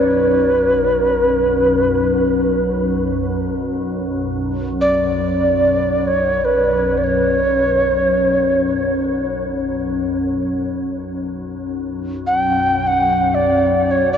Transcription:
Already playing: B1 F#2 B4
4.81 D5
6.07 C#5
6.45 B4
6.98 D5
7.04 C#5
10.20 B1 F#2
12.27 F#5
12.38 G5
12.87 F#5
13.35 D5
13.91 C#5
14.13 D5

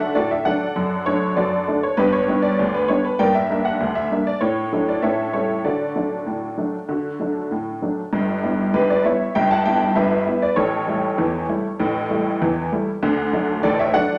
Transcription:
Already playing: D3 F#3 A3 D4 F#4 A4 D5 F#5
0.00 E5
0.15 A2 F#4 A4 D5
0.31 E5
0.45 F#3 A3 D4 A4 D5 F#5
0.76 F#2
1.06 A3 D4 C#5
1.36 F#2 F#4 A4 D5
1.68 A3 D4
1.83 C#5
1.97 G2 B3 D4 G4 B4
2.13 C#5
2.28 G3 B3 D4
2.42 D5
2.59 D2
2.74 B4
2.88 G3 B3 D4 C#5
3.05 B4
3.19 G2 A#3 A#4 D5 G5
3.34 E5
3.50 G3 A#3 D4
3.65 F#5
3.80 D2
3.95 E5
4.11 G3 A#3 D4
4.27 D5
4.41 A2 C#5
4.72 F#3 A3 D4
4.89 D5
5.02 A2 C#4 A4 C#5 E5
5.33 G3 A3 C#4 C#5
5.64 D3 F#4 A4 D5
5.96 F#3 A3 D4
6.26 A2
6.57 F#3 A3 D4
6.89 D3 F#4
7.20 F#3 A3 D4
7.51 A2
7.82 F#3 A3 D4
8.13 G1 G2
8.43 G3 B3 E4
8.74 G1 G2 G4 B4
8.90 B4 D5
9.04 G3 B3 E4 C#5 E5
9.35 G1 G2 E5 G5
9.51 F#5 A5
9.65 G3 B3 E4 E5 G5
9.95 G1 G2 B4 E5
10.27 G3 B3 E4
10.42 B4 D5
10.56 A1 A2 A4 C#5
10.88 G3 A3 E4
11.18 E2 E3
11.49 G3 A3 E4
11.80 A1 A2
12.11 G3 A3 E4
12.42 E2 E3
12.72 G3 A3 E4
13.03 D2 D3
13.33 F#3 A3 D4
13.63 A1 A2 A4 D5
13.79 C#5 E5
13.94 F#3 A3 D4 D5 F#5

